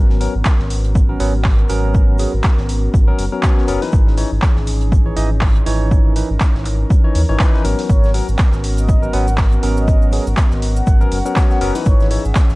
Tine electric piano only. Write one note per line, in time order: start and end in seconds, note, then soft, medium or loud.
0.00 0.18 F#3 medium
0.00 0.18 B3 medium
0.00 0.18 C#4 medium
0.00 0.18 A#4 medium
0.21 0.33 F#3 medium
0.21 0.33 B3 medium
0.21 0.33 C#4 medium
0.21 0.33 A#4 medium
1.09 1.18 F#3 medium
1.09 1.18 B3 medium
1.09 1.18 C#4 medium
1.09 1.18 A#4 medium
1.20 1.32 F#3 medium
1.20 1.32 B3 medium
1.20 1.32 C#4 medium
1.20 1.32 B4 loud
1.69 2.17 F#3 medium
1.69 2.17 B3 medium
1.69 2.17 C#4 medium
1.69 2.17 A#4 loud
2.19 2.32 F#3 medium
2.19 2.32 B3 medium
2.19 2.32 C#4 medium
2.19 2.32 G#4 medium
3.08 3.24 F#3 medium
3.08 3.24 B3 medium
3.08 3.24 C#4 medium
3.08 3.24 A#4 loud
3.32 3.41 F#3 medium
3.32 3.41 B3 medium
3.32 3.41 C#4 medium
3.32 3.41 A#4 medium
3.43 3.65 F#3 medium
3.43 3.65 B3 medium
3.43 3.65 C#4 medium
3.43 3.65 C#5 medium
3.68 3.80 F#3 medium
3.68 3.80 B3 medium
3.68 3.80 C#4 medium
3.68 3.80 A#4 loud
3.82 4.15 E3 medium
3.82 4.15 D#4 medium
3.82 4.15 B4 loud
4.17 4.30 E3 medium
4.17 4.30 D#4 medium
4.17 4.30 C#5 medium
5.06 5.15 E3 medium
5.06 5.15 D#4 medium
5.06 5.15 C#5 medium
5.17 5.29 E3 medium
5.17 5.29 D#4 medium
5.17 5.29 D#5 loud
5.66 6.13 E3 loud
5.66 6.13 D#4 medium
5.66 6.13 C#5 loud
6.16 6.28 E3 medium
6.16 6.28 D#4 medium
6.16 6.28 B4 medium
7.04 7.21 E3 medium
7.04 7.21 D#4 medium
7.04 7.21 C#5 medium
7.29 7.37 E3 medium
7.29 7.37 D#4 medium
7.29 7.37 C#5 loud
7.40 7.52 E3 medium
7.40 7.52 D#4 medium
7.40 7.52 B4 loud
7.54 7.63 E3 medium
7.54 7.63 D#4 medium
7.54 7.63 B4 medium
7.65 8.12 F#3 medium
7.65 8.12 B3 medium
7.65 8.12 C#4 medium
7.65 8.12 A#4 medium
8.14 8.27 F#3 medium
8.14 8.27 B3 medium
8.14 8.27 C#4 medium
8.14 8.27 A#4 medium
9.02 9.12 F#3 medium
9.02 9.12 B3 medium
9.02 9.12 C#4 medium
9.02 9.12 A#4 medium
9.13 9.26 F#3 medium
9.13 9.26 B3 medium
9.13 9.26 C#4 medium
9.13 9.26 B4 loud
9.63 10.10 F#3 medium
9.63 10.10 B3 medium
9.63 10.10 C#4 medium
9.63 10.10 A#4 loud
10.12 10.25 F#3 medium
10.12 10.25 B3 medium
10.12 10.25 C#4 medium
10.12 10.25 G#4 medium
11.01 11.18 F#3 medium
11.01 11.18 B3 medium
11.01 11.18 C#4 medium
11.01 11.18 A#4 loud
11.26 11.34 F#3 medium
11.26 11.34 B3 medium
11.26 11.34 C#4 medium
11.26 11.34 A#4 medium
11.36 11.59 F#3 medium
11.36 11.59 B3 medium
11.36 11.59 C#4 medium
11.36 11.59 C#5 loud
11.61 11.73 F#3 medium
11.61 11.73 B3 medium
11.61 11.73 C#4 medium
11.61 11.73 A#4 loud
11.75 12.08 E3 medium
11.75 12.08 D#4 medium
11.75 12.08 B4 loud
12.11 12.23 E3 medium
12.11 12.23 D#4 medium
12.11 12.23 C#5 medium